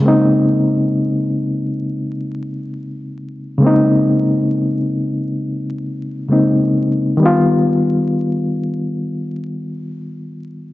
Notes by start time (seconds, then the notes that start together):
0.00 C#3 G#3 A#3
0.06 C4 D#4
3.58 C#3 G#3
3.62 A#3 C4
3.66 D#4
6.28 C#3 G#3 A#3 C4
6.33 D#4
7.17 D#3 G3
7.23 B3 F4